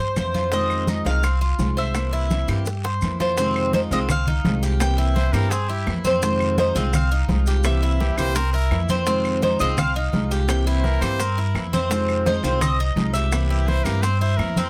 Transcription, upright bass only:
0.00 0.15 G2 medium
0.16 1.00 F2 medium
1.05 1.55 C2 medium
1.59 2.43 C2 medium
2.48 2.98 G2 medium
3.02 3.85 F2 medium
3.91 4.41 C2 medium
4.45 5.28 C2 loud
5.33 5.83 G2 loud
5.87 6.70 F2 loud
6.75 7.25 C2 loud
7.28 8.12 C2 medium
8.17 8.67 C2 medium
8.71 9.54 F2 medium
9.60 10.09 C2 medium
10.14 10.96 C2 medium
11.01 11.51 G2 loud
11.55 12.38 F2 medium
12.43 12.93 C2 medium
12.96 13.79 C2 loud
13.85 14.35 G2 medium
14.38 14.70 F2 medium

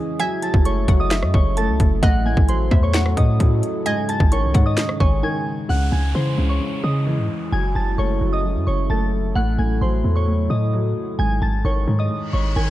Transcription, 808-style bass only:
0.54 0.87 F#1 loud
0.88 1.24 F#1 loud
1.23 1.33 F#2 loud
1.34 1.70 F#1 loud
1.68 1.79 C#2 loud
1.80 2.02 F#1 loud
2.03 2.36 A1 loud
2.37 2.70 A1 loud
2.71 3.15 E2 loud
3.17 3.39 A2 loud
3.40 3.62 A2 loud
4.20 4.45 G#1 loud
4.43 4.54 C2 loud
4.55 4.77 G#2 loud
5.00 5.22 G#1 loud
5.69 5.91 C#2 loud
5.92 6.14 C#2 loud
6.15 6.37 C#3 loud
6.38 6.60 C#2 loud
6.84 7.20 C#3 loud
7.18 7.29 G#2 loud
7.52 7.74 F#1 loud
7.75 7.97 F#1 loud
7.98 8.20 F#1 loud
8.21 8.57 F#1 loud
8.55 8.66 F#2 loud
8.67 8.89 F#1 loud
8.90 9.34 F#1 loud
9.36 9.58 A1 loud
9.59 9.81 A1 loud
9.81 10.03 A1 loud
10.04 10.48 E2 loud
10.50 10.94 A2 loud
11.19 11.41 G#1 loud
11.42 11.64 G#1 loud
11.65 11.87 G#1 loud
11.88 12.10 G#2 loud
12.33 12.55 G#1 loud
12.56 12.70 G#1 loud

